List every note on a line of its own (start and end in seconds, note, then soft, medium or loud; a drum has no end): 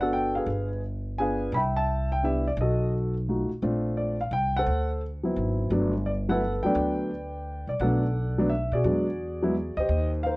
0.00 0.44 G1 medium
0.00 0.46 B3 medium
0.00 0.46 D4 medium
0.00 0.46 F#4 medium
0.00 0.47 A4 medium
0.00 0.14 F#5 medium
0.13 0.34 G5 medium
0.35 0.80 G#4 medium
0.35 0.80 B4 medium
0.35 0.68 F5 medium
0.46 1.48 G1 medium
1.19 1.53 B3 medium
1.19 1.54 D4 medium
1.19 1.54 F4 soft
1.19 1.54 G#4 medium
1.19 1.52 B4 medium
1.19 1.52 F5 medium
1.19 1.54 G#5 medium
1.52 2.53 C2 medium
1.52 1.59 B5 loud
1.56 1.76 E5 medium
1.56 2.08 G5 medium
1.76 2.21 E5 medium
1.76 2.08 A5 loud
2.12 2.23 G5 medium
2.23 2.43 B3 medium
2.23 2.43 D4 medium
2.23 2.44 E4 medium
2.23 2.44 G4 medium
2.23 2.47 E5 medium
2.48 2.52 D5 medium
2.57 3.46 B1 medium
2.57 2.92 D#5 medium
2.61 3.13 F#4 medium
2.61 3.13 A4 medium
3.28 3.48 A3 medium
3.28 3.48 D#4 soft
3.28 3.48 F4 soft
3.28 3.49 F#4 medium
3.50 muted upright bass stroke soft
3.62 4.28 A#1 medium
3.62 4.15 A3 medium
3.62 4.15 C4 medium
3.62 4.16 D4 medium
3.62 4.16 F4 medium
3.97 4.20 D5 medium
4.21 4.33 F5 medium
4.31 4.64 C2 medium
4.31 4.56 G5 loud
4.57 5.01 A4 medium
4.57 5.01 C5 medium
4.57 4.88 F#5 loud
4.66 5.32 D2 medium
5.24 5.69 F#3 medium
5.24 5.69 B3 medium
5.24 5.69 C4 medium
5.24 5.70 E4 medium
5.36 5.69 G#1 medium
5.70 6.59 G1 medium
5.70 5.92 F#3 medium
5.70 5.92 A3 medium
5.70 5.92 B3 medium
5.70 5.92 D4 medium
6.06 6.11 D5 medium
6.29 6.40 F#3 medium
6.29 6.40 A3 medium
6.29 6.40 B3 medium
6.29 6.41 E4 medium
6.29 6.74 A4 medium
6.29 6.65 B4 medium
6.29 6.51 F#5 medium
6.63 6.74 D2 medium
6.63 7.09 F#3 medium
6.63 7.09 A3 medium
6.63 7.09 B3 medium
6.63 7.10 D4 medium
6.63 7.65 B4 medium
6.63 7.65 D5 medium
6.63 7.64 G5 medium
6.75 7.64 D2 medium
7.67 7.79 C2 medium
7.67 7.81 D5 medium
7.79 8.68 B1 medium
7.79 8.01 F#3 medium
7.79 8.02 A3 medium
7.79 8.02 B3 medium
7.79 8.02 D4 medium
7.79 8.47 A4 medium
7.79 8.47 D5 medium
7.79 8.52 F#5 medium
8.38 8.49 F#3 medium
8.38 8.49 A3 medium
8.38 8.49 B3 medium
8.38 8.50 D4 medium
8.49 8.73 E5 medium
8.72 8.84 B2 medium
8.72 9.74 F#4 medium
8.72 9.74 G#4 medium
8.72 9.80 D5 medium
8.84 9.73 E2 medium
8.84 9.05 F#3 medium
8.84 9.06 G#3 medium
8.84 9.06 B3 medium
8.84 9.06 D4 medium
9.43 9.53 F#3 medium
9.43 9.54 G#3 medium
9.43 9.54 B3 medium
9.43 9.54 E4 medium
9.77 9.88 D2 medium
9.77 10.23 G4 medium
9.77 10.22 C5 medium
9.77 10.09 D#5 medium
9.89 10.37 D#2 medium
10.23 10.37 A#4 medium
10.23 10.37 C5 medium
10.23 10.37 F5 medium